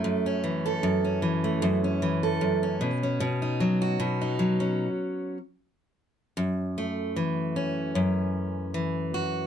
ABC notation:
X:1
M:4/4
L:1/16
Q:"Swing 16ths" 1/4=76
K:F#dor
V:1 name="Steel-string acoustic guitar" clef=bass
[F,,A,] C E, A F,, C E, A, F,, C E, A F,, C B,, C | B,, D F, F B,, D F, C z8 | F,,2 A,2 E,2 C2 F,,4 E,2 F2 |]